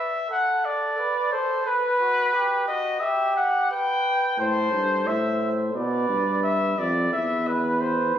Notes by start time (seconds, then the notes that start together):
Already playing: E5
0.30 A4 F#5
0.65 D5
0.98 B4
1.32 A4 C5
1.66 B4
2.00 F#4
2.33 G4
2.67 F#4 D#5
3.01 G4 E5
3.36 F#5
3.71 B4 G5
4.38 A2 A4 C5
4.72 G2
5.06 A2 C5 E5
5.41 C5
5.74 B2 B4 D5
6.09 G2
6.43 E5
6.78 F2 D5
7.12 E2 B4 E5
7.47 B4
7.81 C5
8.15 G#2